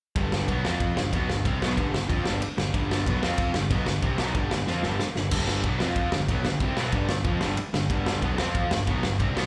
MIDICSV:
0, 0, Header, 1, 6, 480
1, 0, Start_track
1, 0, Tempo, 322581
1, 238, Time_signature, 4, 2, 24, 8
1, 14078, End_track
2, 0, Start_track
2, 0, Title_t, "Distorted electric guitar"
2, 0, Program_c, 0, 30
2, 232, Note_on_c, 0, 43, 97
2, 236, Note_on_c, 0, 50, 100
2, 241, Note_on_c, 0, 55, 103
2, 695, Note_off_c, 0, 50, 0
2, 701, Note_on_c, 0, 47, 79
2, 705, Note_off_c, 0, 55, 0
2, 708, Note_off_c, 0, 43, 0
2, 711, Note_on_c, 0, 54, 99
2, 722, Note_on_c, 0, 59, 105
2, 942, Note_off_c, 0, 47, 0
2, 948, Note_off_c, 0, 54, 0
2, 953, Note_off_c, 0, 59, 0
2, 959, Note_on_c, 0, 53, 94
2, 969, Note_on_c, 0, 60, 94
2, 984, Note_on_c, 0, 65, 114
2, 1431, Note_off_c, 0, 53, 0
2, 1436, Note_off_c, 0, 60, 0
2, 1444, Note_off_c, 0, 65, 0
2, 1454, Note_on_c, 0, 43, 59
2, 1459, Note_on_c, 0, 50, 74
2, 1638, Note_off_c, 0, 43, 0
2, 1641, Note_off_c, 0, 50, 0
2, 1694, Note_on_c, 0, 47, 87
2, 1698, Note_on_c, 0, 54, 101
2, 1714, Note_on_c, 0, 59, 102
2, 1919, Note_off_c, 0, 47, 0
2, 1921, Note_off_c, 0, 54, 0
2, 1927, Note_on_c, 0, 43, 63
2, 1929, Note_off_c, 0, 59, 0
2, 1929, Note_on_c, 0, 50, 75
2, 2115, Note_off_c, 0, 43, 0
2, 2115, Note_off_c, 0, 50, 0
2, 2164, Note_on_c, 0, 48, 97
2, 2167, Note_on_c, 0, 55, 104
2, 2180, Note_on_c, 0, 60, 112
2, 2372, Note_off_c, 0, 48, 0
2, 2378, Note_on_c, 0, 47, 92
2, 2391, Note_off_c, 0, 60, 0
2, 2394, Note_off_c, 0, 55, 0
2, 2397, Note_on_c, 0, 59, 95
2, 2400, Note_on_c, 0, 54, 103
2, 2621, Note_off_c, 0, 47, 0
2, 2630, Note_off_c, 0, 59, 0
2, 2632, Note_off_c, 0, 54, 0
2, 2641, Note_on_c, 0, 43, 78
2, 2647, Note_on_c, 0, 50, 92
2, 2657, Note_on_c, 0, 55, 99
2, 2859, Note_off_c, 0, 43, 0
2, 2859, Note_off_c, 0, 50, 0
2, 2876, Note_on_c, 0, 43, 73
2, 2877, Note_on_c, 0, 50, 75
2, 2880, Note_off_c, 0, 55, 0
2, 3069, Note_off_c, 0, 43, 0
2, 3069, Note_off_c, 0, 50, 0
2, 3111, Note_on_c, 0, 53, 98
2, 3120, Note_on_c, 0, 60, 108
2, 3123, Note_on_c, 0, 65, 111
2, 3347, Note_off_c, 0, 53, 0
2, 3352, Note_off_c, 0, 60, 0
2, 3353, Note_off_c, 0, 65, 0
2, 3357, Note_on_c, 0, 43, 92
2, 3368, Note_on_c, 0, 50, 97
2, 3370, Note_on_c, 0, 55, 106
2, 3577, Note_off_c, 0, 43, 0
2, 3596, Note_off_c, 0, 50, 0
2, 3597, Note_off_c, 0, 55, 0
2, 3823, Note_on_c, 0, 43, 65
2, 3826, Note_on_c, 0, 50, 72
2, 4023, Note_off_c, 0, 43, 0
2, 4024, Note_off_c, 0, 50, 0
2, 4071, Note_on_c, 0, 50, 109
2, 4072, Note_on_c, 0, 43, 96
2, 4075, Note_on_c, 0, 55, 113
2, 4544, Note_off_c, 0, 50, 0
2, 4547, Note_off_c, 0, 43, 0
2, 4549, Note_off_c, 0, 55, 0
2, 4550, Note_on_c, 0, 47, 83
2, 4565, Note_on_c, 0, 54, 93
2, 4567, Note_on_c, 0, 59, 105
2, 4786, Note_off_c, 0, 47, 0
2, 4794, Note_off_c, 0, 54, 0
2, 4795, Note_off_c, 0, 59, 0
2, 4802, Note_on_c, 0, 53, 94
2, 4809, Note_on_c, 0, 60, 102
2, 4817, Note_on_c, 0, 65, 113
2, 5272, Note_off_c, 0, 53, 0
2, 5276, Note_off_c, 0, 60, 0
2, 5280, Note_off_c, 0, 65, 0
2, 5290, Note_on_c, 0, 43, 65
2, 5298, Note_on_c, 0, 50, 68
2, 5475, Note_off_c, 0, 43, 0
2, 5480, Note_off_c, 0, 50, 0
2, 5529, Note_on_c, 0, 47, 87
2, 5536, Note_on_c, 0, 54, 97
2, 5538, Note_on_c, 0, 59, 101
2, 5743, Note_off_c, 0, 47, 0
2, 5749, Note_on_c, 0, 43, 68
2, 5749, Note_on_c, 0, 50, 69
2, 5759, Note_off_c, 0, 54, 0
2, 5761, Note_off_c, 0, 59, 0
2, 5945, Note_off_c, 0, 43, 0
2, 5945, Note_off_c, 0, 50, 0
2, 5997, Note_on_c, 0, 48, 93
2, 6004, Note_on_c, 0, 55, 95
2, 6012, Note_on_c, 0, 60, 107
2, 6213, Note_off_c, 0, 55, 0
2, 6215, Note_off_c, 0, 48, 0
2, 6219, Note_on_c, 0, 54, 98
2, 6221, Note_on_c, 0, 47, 93
2, 6235, Note_off_c, 0, 60, 0
2, 6241, Note_on_c, 0, 59, 98
2, 6461, Note_off_c, 0, 54, 0
2, 6462, Note_off_c, 0, 47, 0
2, 6472, Note_off_c, 0, 59, 0
2, 6474, Note_on_c, 0, 43, 91
2, 6479, Note_on_c, 0, 50, 91
2, 6486, Note_on_c, 0, 55, 100
2, 6703, Note_off_c, 0, 43, 0
2, 6711, Note_off_c, 0, 50, 0
2, 6714, Note_off_c, 0, 55, 0
2, 6721, Note_on_c, 0, 43, 67
2, 6735, Note_on_c, 0, 50, 69
2, 6911, Note_off_c, 0, 43, 0
2, 6918, Note_off_c, 0, 50, 0
2, 6938, Note_on_c, 0, 53, 99
2, 6946, Note_on_c, 0, 60, 107
2, 6961, Note_on_c, 0, 65, 106
2, 7171, Note_on_c, 0, 43, 88
2, 7180, Note_off_c, 0, 53, 0
2, 7184, Note_off_c, 0, 60, 0
2, 7191, Note_off_c, 0, 65, 0
2, 7191, Note_on_c, 0, 50, 87
2, 7196, Note_on_c, 0, 55, 110
2, 7417, Note_off_c, 0, 43, 0
2, 7427, Note_off_c, 0, 50, 0
2, 7429, Note_off_c, 0, 55, 0
2, 7664, Note_on_c, 0, 43, 69
2, 7673, Note_on_c, 0, 50, 75
2, 7862, Note_off_c, 0, 43, 0
2, 7867, Note_off_c, 0, 50, 0
2, 7904, Note_on_c, 0, 43, 100
2, 7915, Note_on_c, 0, 50, 104
2, 7919, Note_on_c, 0, 55, 110
2, 8383, Note_off_c, 0, 43, 0
2, 8389, Note_off_c, 0, 50, 0
2, 8391, Note_off_c, 0, 55, 0
2, 8405, Note_on_c, 0, 47, 89
2, 8409, Note_on_c, 0, 54, 95
2, 8421, Note_on_c, 0, 59, 100
2, 8612, Note_off_c, 0, 47, 0
2, 8618, Note_on_c, 0, 53, 104
2, 8621, Note_off_c, 0, 54, 0
2, 8627, Note_on_c, 0, 60, 95
2, 8633, Note_off_c, 0, 59, 0
2, 8639, Note_on_c, 0, 65, 106
2, 9100, Note_off_c, 0, 53, 0
2, 9105, Note_off_c, 0, 60, 0
2, 9111, Note_off_c, 0, 65, 0
2, 9113, Note_on_c, 0, 43, 63
2, 9119, Note_on_c, 0, 50, 68
2, 9307, Note_off_c, 0, 43, 0
2, 9310, Note_off_c, 0, 50, 0
2, 9359, Note_on_c, 0, 47, 92
2, 9369, Note_on_c, 0, 54, 88
2, 9373, Note_on_c, 0, 59, 93
2, 9591, Note_off_c, 0, 47, 0
2, 9596, Note_off_c, 0, 54, 0
2, 9598, Note_off_c, 0, 59, 0
2, 9606, Note_on_c, 0, 43, 69
2, 9609, Note_on_c, 0, 50, 75
2, 9794, Note_off_c, 0, 43, 0
2, 9795, Note_off_c, 0, 50, 0
2, 9835, Note_on_c, 0, 48, 103
2, 9840, Note_on_c, 0, 55, 103
2, 9849, Note_on_c, 0, 60, 112
2, 10069, Note_off_c, 0, 48, 0
2, 10072, Note_off_c, 0, 55, 0
2, 10076, Note_off_c, 0, 60, 0
2, 10079, Note_on_c, 0, 47, 88
2, 10092, Note_on_c, 0, 54, 91
2, 10101, Note_on_c, 0, 59, 104
2, 10306, Note_on_c, 0, 43, 93
2, 10311, Note_off_c, 0, 47, 0
2, 10318, Note_off_c, 0, 54, 0
2, 10320, Note_on_c, 0, 50, 99
2, 10322, Note_off_c, 0, 59, 0
2, 10324, Note_on_c, 0, 55, 92
2, 10525, Note_off_c, 0, 43, 0
2, 10528, Note_off_c, 0, 50, 0
2, 10543, Note_on_c, 0, 43, 67
2, 10546, Note_on_c, 0, 50, 80
2, 10554, Note_off_c, 0, 55, 0
2, 10742, Note_off_c, 0, 43, 0
2, 10744, Note_off_c, 0, 50, 0
2, 10777, Note_on_c, 0, 53, 95
2, 10781, Note_on_c, 0, 60, 108
2, 10800, Note_on_c, 0, 65, 116
2, 11007, Note_on_c, 0, 43, 83
2, 11009, Note_off_c, 0, 53, 0
2, 11015, Note_on_c, 0, 50, 97
2, 11022, Note_off_c, 0, 60, 0
2, 11032, Note_off_c, 0, 65, 0
2, 11035, Note_on_c, 0, 55, 109
2, 11256, Note_off_c, 0, 43, 0
2, 11260, Note_off_c, 0, 50, 0
2, 11270, Note_off_c, 0, 55, 0
2, 11504, Note_on_c, 0, 50, 74
2, 11505, Note_on_c, 0, 43, 66
2, 11704, Note_off_c, 0, 43, 0
2, 11704, Note_off_c, 0, 50, 0
2, 11741, Note_on_c, 0, 43, 103
2, 11756, Note_on_c, 0, 50, 98
2, 11756, Note_on_c, 0, 55, 99
2, 12223, Note_off_c, 0, 43, 0
2, 12231, Note_off_c, 0, 50, 0
2, 12231, Note_off_c, 0, 55, 0
2, 12243, Note_on_c, 0, 47, 78
2, 12250, Note_on_c, 0, 54, 104
2, 12254, Note_on_c, 0, 59, 101
2, 12462, Note_off_c, 0, 47, 0
2, 12468, Note_on_c, 0, 53, 103
2, 12478, Note_off_c, 0, 54, 0
2, 12480, Note_off_c, 0, 59, 0
2, 12490, Note_on_c, 0, 60, 105
2, 12498, Note_on_c, 0, 65, 108
2, 12947, Note_off_c, 0, 53, 0
2, 12958, Note_off_c, 0, 60, 0
2, 12960, Note_on_c, 0, 43, 68
2, 12962, Note_off_c, 0, 65, 0
2, 12966, Note_on_c, 0, 50, 67
2, 13152, Note_off_c, 0, 43, 0
2, 13155, Note_off_c, 0, 50, 0
2, 13184, Note_on_c, 0, 47, 80
2, 13198, Note_on_c, 0, 59, 91
2, 13199, Note_on_c, 0, 54, 93
2, 13425, Note_off_c, 0, 47, 0
2, 13432, Note_off_c, 0, 59, 0
2, 13433, Note_off_c, 0, 54, 0
2, 13442, Note_on_c, 0, 43, 66
2, 13451, Note_on_c, 0, 50, 78
2, 13634, Note_off_c, 0, 43, 0
2, 13638, Note_off_c, 0, 50, 0
2, 13675, Note_on_c, 0, 48, 97
2, 13679, Note_on_c, 0, 55, 103
2, 13692, Note_on_c, 0, 60, 110
2, 13891, Note_off_c, 0, 48, 0
2, 13897, Note_on_c, 0, 47, 92
2, 13903, Note_off_c, 0, 55, 0
2, 13904, Note_off_c, 0, 60, 0
2, 13909, Note_on_c, 0, 54, 104
2, 13910, Note_on_c, 0, 59, 94
2, 14078, Note_off_c, 0, 47, 0
2, 14078, Note_off_c, 0, 54, 0
2, 14078, Note_off_c, 0, 59, 0
2, 14078, End_track
3, 0, Start_track
3, 0, Title_t, "Picked electric bass"
3, 0, Program_c, 1, 34
3, 236, Note_on_c, 1, 31, 93
3, 684, Note_off_c, 1, 31, 0
3, 722, Note_on_c, 1, 35, 96
3, 943, Note_off_c, 1, 35, 0
3, 957, Note_on_c, 1, 41, 91
3, 1404, Note_off_c, 1, 41, 0
3, 1443, Note_on_c, 1, 31, 80
3, 1664, Note_off_c, 1, 31, 0
3, 1679, Note_on_c, 1, 35, 92
3, 1902, Note_off_c, 1, 35, 0
3, 1934, Note_on_c, 1, 31, 83
3, 2150, Note_off_c, 1, 31, 0
3, 2168, Note_on_c, 1, 36, 95
3, 2387, Note_off_c, 1, 36, 0
3, 2410, Note_on_c, 1, 35, 94
3, 2628, Note_off_c, 1, 35, 0
3, 2645, Note_on_c, 1, 31, 94
3, 2865, Note_off_c, 1, 31, 0
3, 2912, Note_on_c, 1, 31, 76
3, 3111, Note_off_c, 1, 31, 0
3, 3120, Note_on_c, 1, 41, 94
3, 3342, Note_off_c, 1, 41, 0
3, 3376, Note_on_c, 1, 31, 105
3, 3591, Note_off_c, 1, 31, 0
3, 3832, Note_on_c, 1, 31, 80
3, 4058, Note_off_c, 1, 31, 0
3, 4082, Note_on_c, 1, 31, 90
3, 4526, Note_off_c, 1, 31, 0
3, 4562, Note_on_c, 1, 35, 98
3, 4783, Note_off_c, 1, 35, 0
3, 4801, Note_on_c, 1, 41, 101
3, 5245, Note_off_c, 1, 41, 0
3, 5286, Note_on_c, 1, 31, 83
3, 5505, Note_off_c, 1, 31, 0
3, 5518, Note_on_c, 1, 35, 96
3, 5741, Note_off_c, 1, 35, 0
3, 5757, Note_on_c, 1, 31, 75
3, 5980, Note_off_c, 1, 31, 0
3, 5993, Note_on_c, 1, 36, 94
3, 6218, Note_off_c, 1, 36, 0
3, 6239, Note_on_c, 1, 35, 90
3, 6461, Note_off_c, 1, 35, 0
3, 6476, Note_on_c, 1, 31, 90
3, 6699, Note_off_c, 1, 31, 0
3, 6707, Note_on_c, 1, 31, 82
3, 6935, Note_off_c, 1, 31, 0
3, 6954, Note_on_c, 1, 41, 94
3, 7179, Note_off_c, 1, 41, 0
3, 7201, Note_on_c, 1, 31, 97
3, 7422, Note_off_c, 1, 31, 0
3, 7674, Note_on_c, 1, 31, 77
3, 7898, Note_off_c, 1, 31, 0
3, 7913, Note_on_c, 1, 31, 94
3, 8361, Note_off_c, 1, 31, 0
3, 8395, Note_on_c, 1, 35, 94
3, 8619, Note_off_c, 1, 35, 0
3, 8652, Note_on_c, 1, 41, 98
3, 9091, Note_off_c, 1, 41, 0
3, 9122, Note_on_c, 1, 31, 81
3, 9343, Note_off_c, 1, 31, 0
3, 9356, Note_on_c, 1, 35, 92
3, 9580, Note_off_c, 1, 35, 0
3, 9598, Note_on_c, 1, 31, 80
3, 9817, Note_off_c, 1, 31, 0
3, 9826, Note_on_c, 1, 36, 92
3, 10055, Note_off_c, 1, 36, 0
3, 10089, Note_on_c, 1, 35, 92
3, 10307, Note_off_c, 1, 35, 0
3, 10314, Note_on_c, 1, 31, 90
3, 10539, Note_off_c, 1, 31, 0
3, 10569, Note_on_c, 1, 31, 83
3, 10777, Note_off_c, 1, 31, 0
3, 10786, Note_on_c, 1, 41, 94
3, 11015, Note_off_c, 1, 41, 0
3, 11048, Note_on_c, 1, 31, 92
3, 11267, Note_off_c, 1, 31, 0
3, 11516, Note_on_c, 1, 31, 79
3, 11741, Note_off_c, 1, 31, 0
3, 11757, Note_on_c, 1, 31, 97
3, 12205, Note_off_c, 1, 31, 0
3, 12238, Note_on_c, 1, 35, 98
3, 12462, Note_off_c, 1, 35, 0
3, 12490, Note_on_c, 1, 41, 98
3, 12932, Note_off_c, 1, 41, 0
3, 12973, Note_on_c, 1, 31, 81
3, 13191, Note_off_c, 1, 31, 0
3, 13211, Note_on_c, 1, 35, 91
3, 13429, Note_off_c, 1, 35, 0
3, 13456, Note_on_c, 1, 31, 84
3, 13673, Note_off_c, 1, 31, 0
3, 13693, Note_on_c, 1, 36, 94
3, 13911, Note_off_c, 1, 36, 0
3, 13940, Note_on_c, 1, 35, 96
3, 14078, Note_off_c, 1, 35, 0
3, 14078, End_track
4, 0, Start_track
4, 0, Title_t, "Muted distorted electric guitar strokes"
4, 3595, Note_on_c, 9, 29, 60
4, 3744, Note_off_c, 9, 29, 0
4, 7439, Note_on_c, 9, 29, 54
4, 7588, Note_off_c, 9, 29, 0
4, 11271, Note_on_c, 9, 29, 58
4, 11420, Note_off_c, 9, 29, 0
4, 14078, End_track
5, 0, Start_track
5, 0, Title_t, "Muted picked electric bass strokes"
5, 3616, Note_on_c, 9, 29, 43
5, 3765, Note_off_c, 9, 29, 0
5, 7441, Note_on_c, 9, 29, 43
5, 7590, Note_off_c, 9, 29, 0
5, 11298, Note_on_c, 9, 29, 39
5, 11447, Note_off_c, 9, 29, 0
5, 14078, End_track
6, 0, Start_track
6, 0, Title_t, "Drums"
6, 234, Note_on_c, 9, 36, 106
6, 236, Note_on_c, 9, 51, 75
6, 383, Note_off_c, 9, 36, 0
6, 385, Note_off_c, 9, 51, 0
6, 480, Note_on_c, 9, 38, 111
6, 629, Note_off_c, 9, 38, 0
6, 716, Note_on_c, 9, 36, 103
6, 722, Note_on_c, 9, 51, 77
6, 865, Note_off_c, 9, 36, 0
6, 870, Note_off_c, 9, 51, 0
6, 964, Note_on_c, 9, 38, 104
6, 1113, Note_off_c, 9, 38, 0
6, 1195, Note_on_c, 9, 36, 110
6, 1195, Note_on_c, 9, 51, 78
6, 1343, Note_off_c, 9, 51, 0
6, 1344, Note_off_c, 9, 36, 0
6, 1444, Note_on_c, 9, 38, 109
6, 1592, Note_off_c, 9, 38, 0
6, 1678, Note_on_c, 9, 36, 116
6, 1683, Note_on_c, 9, 51, 85
6, 1827, Note_off_c, 9, 36, 0
6, 1832, Note_off_c, 9, 51, 0
6, 1928, Note_on_c, 9, 38, 108
6, 2077, Note_off_c, 9, 38, 0
6, 2162, Note_on_c, 9, 36, 105
6, 2166, Note_on_c, 9, 51, 76
6, 2311, Note_off_c, 9, 36, 0
6, 2314, Note_off_c, 9, 51, 0
6, 2415, Note_on_c, 9, 38, 114
6, 2563, Note_off_c, 9, 38, 0
6, 2640, Note_on_c, 9, 36, 102
6, 2644, Note_on_c, 9, 51, 75
6, 2789, Note_off_c, 9, 36, 0
6, 2792, Note_off_c, 9, 51, 0
6, 2893, Note_on_c, 9, 38, 112
6, 3041, Note_off_c, 9, 38, 0
6, 3119, Note_on_c, 9, 36, 114
6, 3126, Note_on_c, 9, 51, 74
6, 3268, Note_off_c, 9, 36, 0
6, 3275, Note_off_c, 9, 51, 0
6, 3355, Note_on_c, 9, 38, 113
6, 3504, Note_off_c, 9, 38, 0
6, 3597, Note_on_c, 9, 51, 77
6, 3746, Note_off_c, 9, 51, 0
6, 3841, Note_on_c, 9, 38, 106
6, 3990, Note_off_c, 9, 38, 0
6, 4079, Note_on_c, 9, 36, 98
6, 4079, Note_on_c, 9, 51, 74
6, 4228, Note_off_c, 9, 36, 0
6, 4228, Note_off_c, 9, 51, 0
6, 4336, Note_on_c, 9, 38, 108
6, 4485, Note_off_c, 9, 38, 0
6, 4561, Note_on_c, 9, 36, 110
6, 4571, Note_on_c, 9, 51, 77
6, 4710, Note_off_c, 9, 36, 0
6, 4720, Note_off_c, 9, 51, 0
6, 4804, Note_on_c, 9, 38, 114
6, 4953, Note_off_c, 9, 38, 0
6, 5025, Note_on_c, 9, 51, 84
6, 5034, Note_on_c, 9, 36, 110
6, 5174, Note_off_c, 9, 51, 0
6, 5183, Note_off_c, 9, 36, 0
6, 5269, Note_on_c, 9, 38, 110
6, 5418, Note_off_c, 9, 38, 0
6, 5515, Note_on_c, 9, 36, 117
6, 5516, Note_on_c, 9, 51, 83
6, 5664, Note_off_c, 9, 36, 0
6, 5664, Note_off_c, 9, 51, 0
6, 5750, Note_on_c, 9, 38, 108
6, 5899, Note_off_c, 9, 38, 0
6, 5987, Note_on_c, 9, 51, 76
6, 5991, Note_on_c, 9, 36, 106
6, 6136, Note_off_c, 9, 51, 0
6, 6139, Note_off_c, 9, 36, 0
6, 6224, Note_on_c, 9, 38, 111
6, 6372, Note_off_c, 9, 38, 0
6, 6467, Note_on_c, 9, 51, 75
6, 6471, Note_on_c, 9, 36, 96
6, 6616, Note_off_c, 9, 51, 0
6, 6620, Note_off_c, 9, 36, 0
6, 6714, Note_on_c, 9, 38, 116
6, 6863, Note_off_c, 9, 38, 0
6, 6953, Note_on_c, 9, 38, 66
6, 7101, Note_off_c, 9, 38, 0
6, 7189, Note_on_c, 9, 38, 72
6, 7338, Note_off_c, 9, 38, 0
6, 7433, Note_on_c, 9, 38, 98
6, 7582, Note_off_c, 9, 38, 0
6, 7674, Note_on_c, 9, 38, 94
6, 7823, Note_off_c, 9, 38, 0
6, 7905, Note_on_c, 9, 49, 104
6, 7911, Note_on_c, 9, 36, 111
6, 8054, Note_off_c, 9, 49, 0
6, 8060, Note_off_c, 9, 36, 0
6, 8148, Note_on_c, 9, 38, 112
6, 8297, Note_off_c, 9, 38, 0
6, 8385, Note_on_c, 9, 51, 74
6, 8391, Note_on_c, 9, 36, 98
6, 8534, Note_off_c, 9, 51, 0
6, 8540, Note_off_c, 9, 36, 0
6, 8633, Note_on_c, 9, 38, 111
6, 8782, Note_off_c, 9, 38, 0
6, 8864, Note_on_c, 9, 51, 74
6, 8869, Note_on_c, 9, 36, 108
6, 9012, Note_off_c, 9, 51, 0
6, 9018, Note_off_c, 9, 36, 0
6, 9108, Note_on_c, 9, 38, 116
6, 9257, Note_off_c, 9, 38, 0
6, 9352, Note_on_c, 9, 36, 115
6, 9356, Note_on_c, 9, 51, 88
6, 9501, Note_off_c, 9, 36, 0
6, 9505, Note_off_c, 9, 51, 0
6, 9592, Note_on_c, 9, 38, 109
6, 9741, Note_off_c, 9, 38, 0
6, 9824, Note_on_c, 9, 51, 77
6, 9828, Note_on_c, 9, 36, 101
6, 9973, Note_off_c, 9, 51, 0
6, 9977, Note_off_c, 9, 36, 0
6, 10071, Note_on_c, 9, 38, 110
6, 10219, Note_off_c, 9, 38, 0
6, 10301, Note_on_c, 9, 51, 80
6, 10306, Note_on_c, 9, 36, 102
6, 10450, Note_off_c, 9, 51, 0
6, 10455, Note_off_c, 9, 36, 0
6, 10545, Note_on_c, 9, 38, 109
6, 10694, Note_off_c, 9, 38, 0
6, 10780, Note_on_c, 9, 51, 74
6, 10785, Note_on_c, 9, 36, 114
6, 10929, Note_off_c, 9, 51, 0
6, 10933, Note_off_c, 9, 36, 0
6, 11025, Note_on_c, 9, 38, 110
6, 11174, Note_off_c, 9, 38, 0
6, 11266, Note_on_c, 9, 51, 78
6, 11415, Note_off_c, 9, 51, 0
6, 11518, Note_on_c, 9, 38, 105
6, 11667, Note_off_c, 9, 38, 0
6, 11753, Note_on_c, 9, 36, 107
6, 11759, Note_on_c, 9, 51, 74
6, 11902, Note_off_c, 9, 36, 0
6, 11908, Note_off_c, 9, 51, 0
6, 12000, Note_on_c, 9, 38, 113
6, 12149, Note_off_c, 9, 38, 0
6, 12236, Note_on_c, 9, 36, 105
6, 12236, Note_on_c, 9, 51, 69
6, 12385, Note_off_c, 9, 36, 0
6, 12385, Note_off_c, 9, 51, 0
6, 12475, Note_on_c, 9, 38, 113
6, 12624, Note_off_c, 9, 38, 0
6, 12720, Note_on_c, 9, 36, 113
6, 12720, Note_on_c, 9, 51, 79
6, 12868, Note_off_c, 9, 51, 0
6, 12869, Note_off_c, 9, 36, 0
6, 12962, Note_on_c, 9, 38, 119
6, 13111, Note_off_c, 9, 38, 0
6, 13201, Note_on_c, 9, 51, 80
6, 13204, Note_on_c, 9, 36, 113
6, 13350, Note_off_c, 9, 51, 0
6, 13353, Note_off_c, 9, 36, 0
6, 13440, Note_on_c, 9, 38, 108
6, 13589, Note_off_c, 9, 38, 0
6, 13687, Note_on_c, 9, 36, 103
6, 13690, Note_on_c, 9, 51, 77
6, 13836, Note_off_c, 9, 36, 0
6, 13839, Note_off_c, 9, 51, 0
6, 13940, Note_on_c, 9, 38, 114
6, 14078, Note_off_c, 9, 38, 0
6, 14078, End_track
0, 0, End_of_file